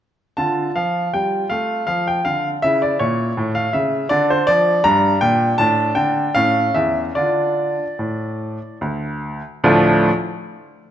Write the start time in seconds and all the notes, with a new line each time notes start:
0.37 D3 F4 A5
0.76 F3 F5
1.14 G3 G5
1.50 A3 F5
1.87 F3 F5
2.08 G5
2.25 D3 F5
2.62 C#3 E4 E5
2.82 D5
2.99 A#2 C#5
3.37 A2
3.55 F5
3.73 C#3 E5
4.09 D3 D4 D5
4.30 C5
4.47 F3 D5
4.84 G2 D4 A#5
5.21 A#2 G5
5.58 A2 D4 A5
5.95 D3 G5
6.35 A2 C#4 F5
6.74 E2 E5
7.15 D3 D4 F4 D5
7.99 A2
8.81 D2
9.64 D2 A2 F3 A3 D4 F4